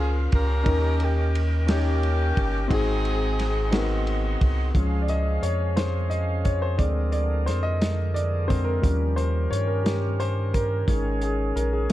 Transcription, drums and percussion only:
0, 0, Header, 1, 2, 480
1, 0, Start_track
1, 0, Key_signature, -5, "major"
1, 0, Tempo, 681044
1, 466, Time_signature, 6, 3, 24, 8
1, 8403, End_track
2, 0, Start_track
2, 0, Title_t, "Drums"
2, 226, Note_on_c, 9, 51, 58
2, 231, Note_on_c, 9, 36, 82
2, 297, Note_off_c, 9, 51, 0
2, 302, Note_off_c, 9, 36, 0
2, 464, Note_on_c, 9, 51, 65
2, 465, Note_on_c, 9, 36, 107
2, 535, Note_off_c, 9, 51, 0
2, 536, Note_off_c, 9, 36, 0
2, 703, Note_on_c, 9, 51, 43
2, 774, Note_off_c, 9, 51, 0
2, 954, Note_on_c, 9, 51, 61
2, 1024, Note_off_c, 9, 51, 0
2, 1187, Note_on_c, 9, 51, 74
2, 1190, Note_on_c, 9, 38, 116
2, 1257, Note_off_c, 9, 51, 0
2, 1260, Note_off_c, 9, 38, 0
2, 1432, Note_on_c, 9, 51, 39
2, 1502, Note_off_c, 9, 51, 0
2, 1671, Note_on_c, 9, 51, 56
2, 1672, Note_on_c, 9, 36, 93
2, 1742, Note_off_c, 9, 51, 0
2, 1743, Note_off_c, 9, 36, 0
2, 1907, Note_on_c, 9, 36, 104
2, 1909, Note_on_c, 9, 51, 70
2, 1978, Note_off_c, 9, 36, 0
2, 1979, Note_off_c, 9, 51, 0
2, 2149, Note_on_c, 9, 51, 39
2, 2220, Note_off_c, 9, 51, 0
2, 2392, Note_on_c, 9, 51, 58
2, 2397, Note_on_c, 9, 38, 33
2, 2463, Note_off_c, 9, 51, 0
2, 2467, Note_off_c, 9, 38, 0
2, 2625, Note_on_c, 9, 51, 75
2, 2628, Note_on_c, 9, 38, 119
2, 2695, Note_off_c, 9, 51, 0
2, 2698, Note_off_c, 9, 38, 0
2, 2868, Note_on_c, 9, 51, 41
2, 2939, Note_off_c, 9, 51, 0
2, 3110, Note_on_c, 9, 51, 61
2, 3111, Note_on_c, 9, 36, 86
2, 3180, Note_off_c, 9, 51, 0
2, 3181, Note_off_c, 9, 36, 0
2, 3346, Note_on_c, 9, 36, 93
2, 3349, Note_on_c, 9, 42, 65
2, 3417, Note_off_c, 9, 36, 0
2, 3419, Note_off_c, 9, 42, 0
2, 3583, Note_on_c, 9, 42, 43
2, 3654, Note_off_c, 9, 42, 0
2, 3828, Note_on_c, 9, 42, 61
2, 3898, Note_off_c, 9, 42, 0
2, 4066, Note_on_c, 9, 42, 79
2, 4069, Note_on_c, 9, 38, 98
2, 4137, Note_off_c, 9, 42, 0
2, 4139, Note_off_c, 9, 38, 0
2, 4305, Note_on_c, 9, 42, 40
2, 4376, Note_off_c, 9, 42, 0
2, 4546, Note_on_c, 9, 42, 61
2, 4549, Note_on_c, 9, 36, 76
2, 4616, Note_off_c, 9, 42, 0
2, 4619, Note_off_c, 9, 36, 0
2, 4784, Note_on_c, 9, 36, 86
2, 4785, Note_on_c, 9, 42, 71
2, 4855, Note_off_c, 9, 36, 0
2, 4855, Note_off_c, 9, 42, 0
2, 5021, Note_on_c, 9, 42, 42
2, 5091, Note_off_c, 9, 42, 0
2, 5269, Note_on_c, 9, 42, 59
2, 5273, Note_on_c, 9, 38, 31
2, 5339, Note_off_c, 9, 42, 0
2, 5344, Note_off_c, 9, 38, 0
2, 5509, Note_on_c, 9, 42, 77
2, 5511, Note_on_c, 9, 38, 101
2, 5579, Note_off_c, 9, 42, 0
2, 5582, Note_off_c, 9, 38, 0
2, 5753, Note_on_c, 9, 42, 41
2, 5823, Note_off_c, 9, 42, 0
2, 5992, Note_on_c, 9, 36, 73
2, 5992, Note_on_c, 9, 42, 65
2, 6063, Note_off_c, 9, 36, 0
2, 6063, Note_off_c, 9, 42, 0
2, 6227, Note_on_c, 9, 36, 90
2, 6229, Note_on_c, 9, 42, 72
2, 6297, Note_off_c, 9, 36, 0
2, 6300, Note_off_c, 9, 42, 0
2, 6467, Note_on_c, 9, 42, 42
2, 6537, Note_off_c, 9, 42, 0
2, 6715, Note_on_c, 9, 42, 62
2, 6786, Note_off_c, 9, 42, 0
2, 6949, Note_on_c, 9, 42, 77
2, 6952, Note_on_c, 9, 38, 107
2, 7019, Note_off_c, 9, 42, 0
2, 7022, Note_off_c, 9, 38, 0
2, 7189, Note_on_c, 9, 42, 42
2, 7260, Note_off_c, 9, 42, 0
2, 7430, Note_on_c, 9, 42, 66
2, 7431, Note_on_c, 9, 36, 79
2, 7501, Note_off_c, 9, 42, 0
2, 7502, Note_off_c, 9, 36, 0
2, 7667, Note_on_c, 9, 36, 86
2, 7669, Note_on_c, 9, 42, 73
2, 7737, Note_off_c, 9, 36, 0
2, 7739, Note_off_c, 9, 42, 0
2, 7904, Note_on_c, 9, 42, 45
2, 7975, Note_off_c, 9, 42, 0
2, 8153, Note_on_c, 9, 42, 66
2, 8224, Note_off_c, 9, 42, 0
2, 8403, End_track
0, 0, End_of_file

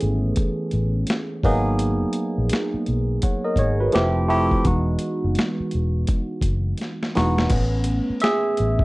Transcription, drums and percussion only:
0, 0, Header, 1, 2, 480
1, 0, Start_track
1, 0, Tempo, 714286
1, 1203, Time_signature, 4, 2, 24, 8
1, 5945, End_track
2, 0, Start_track
2, 0, Title_t, "Drums"
2, 4, Note_on_c, 9, 42, 57
2, 71, Note_off_c, 9, 42, 0
2, 241, Note_on_c, 9, 42, 81
2, 250, Note_on_c, 9, 36, 93
2, 308, Note_off_c, 9, 42, 0
2, 317, Note_off_c, 9, 36, 0
2, 479, Note_on_c, 9, 42, 58
2, 546, Note_off_c, 9, 42, 0
2, 717, Note_on_c, 9, 42, 79
2, 739, Note_on_c, 9, 38, 105
2, 785, Note_off_c, 9, 42, 0
2, 806, Note_off_c, 9, 38, 0
2, 964, Note_on_c, 9, 36, 97
2, 970, Note_on_c, 9, 46, 44
2, 1031, Note_off_c, 9, 36, 0
2, 1037, Note_off_c, 9, 46, 0
2, 1203, Note_on_c, 9, 42, 79
2, 1270, Note_off_c, 9, 42, 0
2, 1430, Note_on_c, 9, 42, 81
2, 1497, Note_off_c, 9, 42, 0
2, 1676, Note_on_c, 9, 42, 68
2, 1701, Note_on_c, 9, 38, 104
2, 1744, Note_off_c, 9, 42, 0
2, 1768, Note_off_c, 9, 38, 0
2, 1924, Note_on_c, 9, 42, 58
2, 1992, Note_off_c, 9, 42, 0
2, 2163, Note_on_c, 9, 42, 88
2, 2171, Note_on_c, 9, 36, 87
2, 2231, Note_off_c, 9, 42, 0
2, 2239, Note_off_c, 9, 36, 0
2, 2392, Note_on_c, 9, 36, 81
2, 2399, Note_on_c, 9, 42, 64
2, 2459, Note_off_c, 9, 36, 0
2, 2466, Note_off_c, 9, 42, 0
2, 2637, Note_on_c, 9, 42, 70
2, 2658, Note_on_c, 9, 38, 105
2, 2704, Note_off_c, 9, 42, 0
2, 2725, Note_off_c, 9, 38, 0
2, 2890, Note_on_c, 9, 46, 47
2, 2957, Note_off_c, 9, 46, 0
2, 3033, Note_on_c, 9, 36, 75
2, 3100, Note_off_c, 9, 36, 0
2, 3123, Note_on_c, 9, 42, 80
2, 3125, Note_on_c, 9, 36, 114
2, 3190, Note_off_c, 9, 42, 0
2, 3193, Note_off_c, 9, 36, 0
2, 3351, Note_on_c, 9, 42, 80
2, 3419, Note_off_c, 9, 42, 0
2, 3596, Note_on_c, 9, 42, 67
2, 3620, Note_on_c, 9, 38, 108
2, 3663, Note_off_c, 9, 42, 0
2, 3688, Note_off_c, 9, 38, 0
2, 3839, Note_on_c, 9, 42, 48
2, 3906, Note_off_c, 9, 42, 0
2, 4081, Note_on_c, 9, 42, 80
2, 4090, Note_on_c, 9, 36, 96
2, 4148, Note_off_c, 9, 42, 0
2, 4157, Note_off_c, 9, 36, 0
2, 4310, Note_on_c, 9, 36, 86
2, 4317, Note_on_c, 9, 42, 63
2, 4378, Note_off_c, 9, 36, 0
2, 4384, Note_off_c, 9, 42, 0
2, 4553, Note_on_c, 9, 42, 68
2, 4579, Note_on_c, 9, 38, 52
2, 4620, Note_off_c, 9, 42, 0
2, 4646, Note_off_c, 9, 38, 0
2, 4722, Note_on_c, 9, 38, 58
2, 4789, Note_off_c, 9, 38, 0
2, 4806, Note_on_c, 9, 46, 48
2, 4819, Note_on_c, 9, 38, 89
2, 4873, Note_off_c, 9, 46, 0
2, 4886, Note_off_c, 9, 38, 0
2, 4962, Note_on_c, 9, 38, 83
2, 5029, Note_off_c, 9, 38, 0
2, 5037, Note_on_c, 9, 42, 76
2, 5039, Note_on_c, 9, 49, 106
2, 5043, Note_on_c, 9, 36, 110
2, 5105, Note_off_c, 9, 42, 0
2, 5106, Note_off_c, 9, 49, 0
2, 5110, Note_off_c, 9, 36, 0
2, 5268, Note_on_c, 9, 42, 80
2, 5335, Note_off_c, 9, 42, 0
2, 5512, Note_on_c, 9, 42, 70
2, 5537, Note_on_c, 9, 38, 117
2, 5580, Note_off_c, 9, 42, 0
2, 5604, Note_off_c, 9, 38, 0
2, 5761, Note_on_c, 9, 42, 60
2, 5828, Note_off_c, 9, 42, 0
2, 5908, Note_on_c, 9, 36, 98
2, 5945, Note_off_c, 9, 36, 0
2, 5945, End_track
0, 0, End_of_file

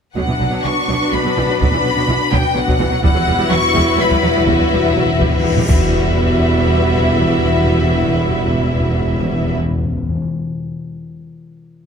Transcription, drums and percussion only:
0, 0, Header, 1, 2, 480
1, 0, Start_track
1, 0, Key_signature, 1, "minor"
1, 0, Tempo, 480384
1, 169, Time_signature, 3, 2, 24, 8
1, 11852, End_track
2, 0, Start_track
2, 0, Title_t, "Taiko and cinematic ensemble drums"
2, 171, Note_on_c, 9, 41, 46
2, 271, Note_off_c, 9, 41, 0
2, 901, Note_on_c, 9, 41, 30
2, 1001, Note_off_c, 9, 41, 0
2, 1613, Note_on_c, 9, 41, 78
2, 1713, Note_off_c, 9, 41, 0
2, 2329, Note_on_c, 9, 41, 66
2, 2429, Note_off_c, 9, 41, 0
2, 2684, Note_on_c, 9, 41, 63
2, 2784, Note_off_c, 9, 41, 0
2, 3044, Note_on_c, 9, 41, 80
2, 3144, Note_off_c, 9, 41, 0
2, 3754, Note_on_c, 9, 41, 69
2, 3854, Note_off_c, 9, 41, 0
2, 4108, Note_on_c, 9, 41, 66
2, 4208, Note_off_c, 9, 41, 0
2, 4468, Note_on_c, 9, 41, 85
2, 4567, Note_off_c, 9, 41, 0
2, 5206, Note_on_c, 9, 41, 67
2, 5306, Note_off_c, 9, 41, 0
2, 5569, Note_on_c, 9, 45, 74
2, 5668, Note_off_c, 9, 45, 0
2, 5691, Note_on_c, 9, 41, 81
2, 5791, Note_off_c, 9, 41, 0
2, 11852, End_track
0, 0, End_of_file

